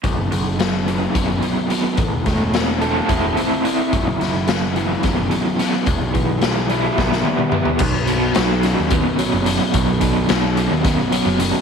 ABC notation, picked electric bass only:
X:1
M:7/8
L:1/16
Q:1/4=108
K:none
V:1 name="Picked electric bass" clef=bass
B,,,, ^F,,, F,,,6 F,,,2 z4 | A,,, E,,, E,,,6 E,,,2 z4 | B,,,, ^F,,, F,,,6 F,,,2 z4 | E,,, B,,, B,,,6 B,,,2 z4 |
B,,,4 B,,,3 ^D,,2 z2 ^F,,,2 z | B,,,4 B,,,3 ^D,,2 z2 ^F,,,2 z |]